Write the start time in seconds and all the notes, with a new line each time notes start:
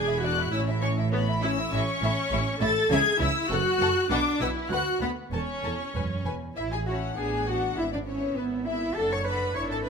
Already playing: E1 E2 G#4 G#6
0.08 E4 E5
0.22 D4 F#4 D5 F#6
0.40 E4 E5
0.51 A1 A2 C#4 E4 C#5 E6
0.68 E4 E5
0.82 C#4 C#5 C#6
0.97 E4 E5
1.12 B3 C#4 C#5 B5
1.28 E4 E5
1.42 C#4 E4 C#5 E6
1.58 E4 E5
1.71 A1 A2 C#4 E4 E5 C#6
2.01 A1 A2 E4 E5
2.31 A1 A2 E4 E5
2.60 A1 A2 E4 A4 E5 A6
2.90 C#2 C#3 E4 G#4 E5 G#6
3.19 C#2 C#3 E4 E5 E6
3.50 F#1 F#2 F#4 A4 F#5 F#6
3.79 F#1 F#2 A4 F#5
4.09 B1 B2 D4 B4 F#5 D6
4.40 B1 B2 E4 B4 F#5 E6
4.70 D2 F#4 B4 F#5 F#6
5.00 D2 B3 B4 F#5 B5
5.31 E1 E2 C#4 A4 A5 C#6
5.63 E1 E2 A4 A5
5.95 E1 F#2 B4 G#5
6.25 E1 E2 B4 G#5
6.56 A1 E4 E5
6.72 G#4 G#5
6.87 C#4 E4 F#4 F#5 A5
7.16 A1 B3 D4 G#4 F#5 G#5
7.48 B3 D4 F#4 F#5
7.77 G#1 E4 E5
7.92 D4 D5
8.07 B3 C#4 E4 C#5 E5
8.36 G#1 B3 B4
8.65 B3 E4 E5
8.96 F#1 D4 A4 F#5 A5
9.11 C#5 C#6
9.24 D4 A4 B4 F#5 B5
9.55 G#1 D4 E4 C#5 E5 C#6
9.71 A4 A5
9.84 D4 E4 B4 E5 B5